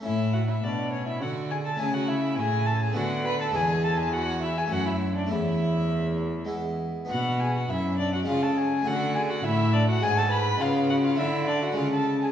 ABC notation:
X:1
M:3/4
L:1/16
Q:1/4=103
K:A
V:1 name="Violin"
e2 f e d2 c e f2 g a | g f e2 g2 a g f2 b a | g2 a g f2 e g f e2 d | e8 z4 |
[K:Dlyd] f2 g f e2 d f ^e a g2 | f2 g f e2 d f g a b2 | ^e2 f e =e2 d f ^e a2 g |]
V:2 name="Violin"
E2 F E D2 C E F2 G A | G F E2 G2 A G F2 B A | G2 A G F2 E G F E2 D | E8 z4 |
[K:Dlyd] F2 G F E2 D F ^E A G2 | F2 G F E2 D F G A B2 | ^E2 F E =E2 D F ^E A2 G |]
V:3 name="Harpsichord"
[A,CE]12 | [A,CE]8 [A,B,D]4 | [G,B,D]8 [A,C]4 | [A,C]8 [G,B,E]4 |
[K:Dlyd] [B,DF]8 [G,C^E]4 | [A,DF]8 [G,DF]4 | [G,B,^E]4 [A,F]4 [G,C]4 |]
V:4 name="Harpsichord" clef=bass
A,,4 B,,4 D,4 | C,4 A,,4 D,4 | E,,8 F,,4 | E,,8- E,,2 z2 |
[K:Dlyd] B,,4 F,,4 C,4 | D,4 A,,4 G,,4 | C,4 D,4 C,4 |]
V:5 name="Cello" clef=bass
A,,4 B,,4 D,4 | C,4 A,,4 D,4 | E,,8 F,,4 | E,,8- E,,2 z2 |
[K:Dlyd] B,,4 F,,4 C,4 | D,4 A,,4 G,,4 | C,4 D,4 C,4 |]